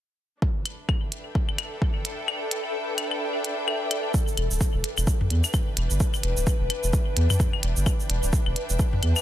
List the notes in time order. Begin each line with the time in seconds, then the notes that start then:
0.42 D4 A4, kick
0.56 B4
0.66 closed hi-hat, claves
0.76 E5
0.89 kick, claves
0.95 G5
1.12 closed hi-hat
1.35 kick
1.49 claves
1.58 closed hi-hat, claves
1.82 kick
2.05 closed hi-hat
2.28 claves
2.51 closed hi-hat
2.98 closed hi-hat, claves
3.11 claves
3.44 closed hi-hat
3.68 claves
3.91 closed hi-hat, claves
4.14 B4, kick, shaker
4.28 shaker
4.37 E1, closed hi-hat, claves
4.51 D1, shaker
4.61 kick, shaker
4.74 E1
4.84 closed hi-hat
4.97 E1, claves, shaker
5.07 kick, shaker
5.21 mid tom
5.30 E2, closed hi-hat
5.44 claves, shaker
5.54 kick, claves, shaker
5.77 E1, closed hi-hat
5.90 G1, shaker
6.00 kick, shaker
6.14 claves, shaker
6.23 E1, closed hi-hat
6.37 D1, shaker
6.47 kick, shaker
6.60 E1
6.70 closed hi-hat, claves
6.84 E1, shaker
6.93 kick, shaker
7.17 E2, closed hi-hat
7.30 mid tom, claves, shaker
7.40 kick, shaker
7.53 claves
7.63 E1, closed hi-hat
7.77 G1, shaker
7.86 kick, claves, shaker
8.00 shaker
8.10 E1, closed hi-hat
8.23 D1, shaker
8.33 kick, shaker
8.46 E1, claves
8.56 closed hi-hat
8.70 E1, shaker
8.79 kick, shaker
8.93 mid tom
9.03 E2, closed hi-hat, claves
9.16 claves, shaker